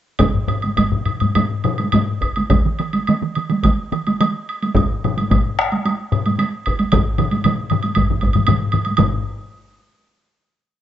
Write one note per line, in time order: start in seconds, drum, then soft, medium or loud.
0.19 taiko medium
0.19 taiko low-mid medium
0.19 taiko high medium
0.19 high woodblock medium
0.34 taiko low-mid medium
0.48 taiko low-mid medium
0.48 high woodblock soft
0.62 taiko high soft
0.62 high woodblock soft
0.77 taiko medium
0.77 taiko low-mid medium
0.77 taiko high medium
0.77 high woodblock medium
0.92 taiko low-mid medium
1.05 taiko low-mid medium
1.05 high woodblock soft
1.20 taiko low-mid medium
1.20 taiko high soft
1.20 high woodblock soft
1.35 taiko low-mid medium
1.35 taiko high medium
1.35 high woodblock medium
1.64 taiko low-mid medium
1.64 high woodblock soft
1.78 taiko high medium
1.78 high woodblock soft
1.92 taiko low-mid medium
1.92 taiko high medium
1.92 high woodblock medium
2.22 taiko medium
2.22 high woodblock soft
2.36 taiko high medium
2.36 high woodblock soft
2.50 taiko medium
2.50 taiko mid medium
2.50 taiko high medium
2.50 high woodblock soft
2.65 taiko mid medium
2.79 taiko mid medium
2.79 high woodblock soft
2.93 taiko high medium
2.93 high woodblock soft
3.07 taiko mid medium
3.07 taiko high medium
3.07 high woodblock soft
3.22 taiko mid medium
3.35 taiko mid medium
3.35 high woodblock soft
3.50 taiko mid medium
3.50 taiko high soft
3.50 high woodblock soft
3.64 taiko medium
3.64 taiko mid medium
3.64 taiko high medium
3.64 high woodblock soft
3.92 taiko mid medium
3.92 high woodblock soft
4.07 taiko high medium
4.07 high woodblock soft
4.20 taiko mid medium
4.20 taiko high medium
4.20 high woodblock soft
4.49 high woodblock soft
4.62 taiko high medium
4.62 high woodblock soft
4.75 taiko medium
4.75 taiko low-mid medium
4.75 taiko high medium
4.75 high woodblock soft
5.04 taiko low-mid loud
5.04 high woodblock soft
5.17 taiko high medium
5.17 high woodblock soft
5.31 taiko medium
5.31 taiko low-mid medium
5.31 taiko high medium
5.31 high woodblock soft
5.59 taiko rim medium
5.59 high woodblock soft
5.72 taiko high soft
5.72 high woodblock soft
5.85 taiko high medium
5.85 high woodblock soft
6.12 taiko low-mid medium
6.12 high woodblock soft
6.26 taiko high soft
6.26 high woodblock soft
6.39 taiko high medium
6.39 high woodblock medium
6.66 taiko medium
6.66 high woodblock soft
6.79 taiko high soft
6.79 high woodblock soft
6.92 taiko medium
6.92 taiko low-mid medium
6.92 taiko mid medium
6.92 taiko high medium
6.92 high woodblock medium
7.18 taiko low-mid medium
7.18 taiko mid medium
7.18 high woodblock soft
7.31 taiko high soft
7.31 high woodblock soft
7.44 taiko low-mid medium
7.44 taiko mid medium
7.44 taiko high medium
7.44 high woodblock medium
7.70 taiko low-mid medium
7.70 taiko mid loud
7.70 high woodblock soft
7.83 taiko high soft
7.83 high woodblock soft
7.95 taiko medium
7.95 taiko low-mid medium
7.95 taiko mid medium
7.95 taiko high medium
7.95 high woodblock medium
8.10 taiko low-mid medium
8.10 taiko mid medium
8.21 taiko medium
8.21 taiko high soft
8.21 high woodblock soft
8.33 taiko low-mid medium
8.33 taiko mid medium
8.33 taiko high soft
8.33 high woodblock soft
8.47 taiko low-mid medium
8.47 taiko mid medium
8.47 taiko high soft
8.47 high woodblock medium
8.72 taiko low-mid medium
8.72 taiko mid medium
8.72 high woodblock soft
8.85 taiko high soft
8.85 high woodblock soft
8.97 taiko medium
8.97 taiko low-mid medium
8.97 taiko mid medium
8.97 taiko high medium
8.97 high woodblock medium